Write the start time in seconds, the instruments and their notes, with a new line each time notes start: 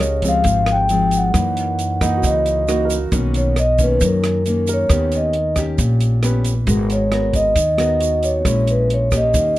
Already playing: upright bass C#2, nylon-string guitar C#3, grand piano F#4 G4 A#4 D#5, vibraphone C#5
0.02 shaker
0.22 nylon-string guitar F3 G#3 C4, kick, closed hi-hat, shaker
0.29 vibraphone F5
0.44 upright bass G#1, nylon-string guitar G#2, kick, closed hi-hat, shaker
0.66 cross-stick, closed hi-hat, shaker
0.72 vibraphone G5
0.89 nylon-string guitar F3 G#3 C4, closed hi-hat, shaker
1.11 closed hi-hat, shaker
1.17 vibraphone F#5
1.34 nylon-string guitar F#2 E3 A#3 D#4, upright bass F#2, kick, cross-stick, closed hi-hat, shaker
1.57 closed hi-hat, shaker
1.79 closed hi-hat, shaker
2.01 nylon-string guitar E3 A#3 D#4, grand piano D#4, vibraphone F#5, kick, cross-stick, closed hi-hat, shaker
2.17 grand piano F#4
2.23 upright bass C#2, nylon-string guitar C#3, vibraphone D#5, kick, closed hi-hat, shaker
2.46 vibraphone D#5, closed hi-hat, shaker
2.68 nylon-string guitar E3 A#3 D#4, grand piano F#4, cross-stick, closed hi-hat, shaker
2.85 grand piano A#4
2.90 closed hi-hat, shaker
3.12 upright bass B1, nylon-string guitar B2 D#3 A#3 C#4, kick, closed hi-hat, shaker
3.34 vibraphone C#5, closed hi-hat, shaker
3.56 vibraphone D#5, cross-stick, closed hi-hat, shaker
3.79 nylon-string guitar D#3 A#3 C#4, vibraphone B4, kick, closed hi-hat, shaker
4.01 upright bass F#2, nylon-string guitar F#2, kick, closed hi-hat, shaker
4.05 vibraphone A#4
4.24 cross-stick, closed hi-hat, shaker
4.46 nylon-string guitar D#3 A#3 C#4, closed hi-hat, shaker
4.67 grand piano A#4, closed hi-hat, shaker
4.73 vibraphone C#5
4.89 upright bass D#2, nylon-string guitar D#3 B3 C#4 G4, kick, cross-stick, closed hi-hat, shaker
5.12 closed hi-hat, shaker
5.16 vibraphone D#5
5.33 closed hi-hat
5.56 nylon-string guitar C#4 G4, kick, cross-stick, closed hi-hat, shaker
5.78 upright bass A#1, nylon-string guitar A#2, kick, closed hi-hat, shaker
6.01 closed hi-hat, shaker
6.23 nylon-string guitar B3 C#4 G4, grand piano B4, cross-stick, closed hi-hat, shaker
6.45 closed hi-hat, shaker
6.67 upright bass G#1, nylon-string guitar G#3 B3 F#4 A#4, kick, closed hi-hat, shaker
6.90 vibraphone C#5, closed hi-hat, shaker
7.12 nylon-string guitar B3 F#4 A#4, cross-stick, closed hi-hat
7.33 vibraphone D#5, kick, closed hi-hat, shaker
7.55 upright bass D#2, nylon-string guitar D#3, kick, closed hi-hat, shaker
7.77 nylon-string guitar B3 F#4 A#4, cross-stick, closed hi-hat, shaker
8.00 grand piano F#4, closed hi-hat, shaker
8.23 vibraphone C#5, closed hi-hat, shaker
8.45 upright bass A#1, nylon-string guitar A#2 G#3 C#4 E4, vibraphone C#5, kick, cross-stick, closed hi-hat, shaker
8.67 vibraphone B4, closed hi-hat, shaker
8.90 vibraphone C#5, closed hi-hat
9.12 nylon-string guitar A#3 C#4 G4, kick, cross-stick, closed hi-hat, shaker
9.17 vibraphone D#5
9.34 upright bass D#2, nylon-string guitar D#3, kick, closed hi-hat, shaker